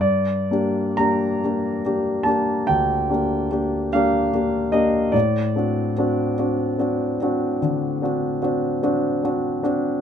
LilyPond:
\new Staff \with { instrumentName = "Grand piano" } { \time 12/8 \key g \minor \tempo 4. = 49 << { d''4 bes''4. a''8 g''4. f''4 ees''8 | d''1~ d''4. r8 | } \\ { g,8 <bes d' g'>8 <bes d' g'>8 <bes d' g'>8 <bes d' g'>8 <bes d' g'>8 d,8 <bes d' g'>8 <bes d' g'>8 <bes d' g'>8 <bes d' g'>8 <bes d' g'>8 | a,8 <c' d' fis'>8 <c' d' fis'>8 <c' d' fis'>8 <c' d' fis'>8 <c' d' fis'>8 d8 <c' d' fis'>8 <c' d' fis'>8 <c' d' fis'>8 <c' d' fis'>8 <c' d' fis'>8 | } >> }